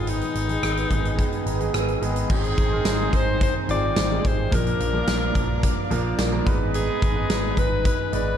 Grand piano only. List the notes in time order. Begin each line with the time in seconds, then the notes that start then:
Already playing: D#3 G#3 B3 G#4
0.48 D#3 G#3 B3 G#4
0.90 D#3 G#3 B3 G#4
1.18 D#3 G#3 B3 G#4
1.46 A#5
1.59 D#3 G#3 B3 G#4
1.74 G#5
2.01 D#3 G#3 B3 G#4 D#5
2.29 D#3 G#3 C4 G#4
2.71 D#3 G#3 C4 A#4
3.69 D#3 G#3 C4 F4
4.11 D#3 G#3 C4 G4
4.18 G#4
4.51 F3 A#3 D4 A#4
4.93 F3 A#3 D4 A#4
5.90 F3 A#3 D4 A#4
6.32 F3 A#3 D4 A#4
6.46 G#3 B3 D#4 B4
7.15 G#3 B3 D#4 B4
8.12 G#3 B3 D#4 D5